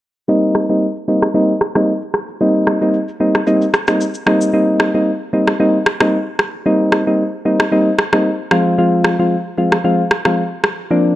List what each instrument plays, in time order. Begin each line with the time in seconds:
0.28 synth keys G3 A#3 C4 D#4, shaker
0.43 shaker
0.54 cross-stick, shaker
0.69 synth keys G3 A#3 C4 D#4, shaker
0.82 shaker
0.96 shaker
1.08 synth keys G3 A#3 C4 D#4
1.22 cross-stick, shaker
1.34 synth keys G3 A#3 C4 D#4, shaker
1.49 shaker
1.61 cross-stick, shaker
1.75 synth keys G3 A#3 C4 D#4, cross-stick, shaker
1.88 shaker
2.02 shaker
2.14 cross-stick
2.28 shaker
2.40 synth keys G3 A#3 C4 D#4, shaker
2.55 shaker
2.66 cross-stick, shaker
2.81 synth keys G3 A#3 C4 D#4, shaker
2.94 shaker
3.08 shaker
3.20 synth keys G3 A#3 C4 D#4
3.35 cross-stick, shaker
3.47 synth keys G3 A#3 C4 D#4, shaker
3.62 shaker
3.74 cross-stick, shaker
3.87 synth keys G3 A#3 C4 D#4, cross-stick, shaker
4.01 shaker
4.14 shaker
4.26 synth keys G3 A#3 C4 D#4, cross-stick
4.41 shaker
4.53 synth keys G3 A#3 C4 D#4
4.80 cross-stick
4.94 synth keys G3 A#3 C4 D#4
5.33 synth keys G3 A#3 C4 D#4
5.47 cross-stick
5.60 synth keys G3 A#3 C4 D#4
5.86 cross-stick
6.00 synth keys G3 A#3 C4 D#4, cross-stick
6.39 cross-stick
6.66 synth keys G3 A#3 C4 D#4
6.92 cross-stick
7.07 synth keys G3 A#3 C4 D#4
7.45 synth keys G3 A#3 C4 D#4
7.60 cross-stick
7.72 synth keys G3 A#3 C4 D#4
7.99 cross-stick
8.13 synth keys G3 A#3 C4 D#4, cross-stick
8.51 synth keys F3 G#3 C4 F4, cross-stick
8.78 synth keys F3 G#3 C4 F4
9.04 cross-stick
9.19 synth keys F3 G#3 C4 F4
9.58 synth keys F3 G#3 C4 F4
9.72 cross-stick
9.84 synth keys F3 G#3 C4 F4
10.11 cross-stick
10.25 synth keys F3 G#3 C4 F4, cross-stick
10.64 cross-stick
10.91 synth keys F3 A#3 C4 D4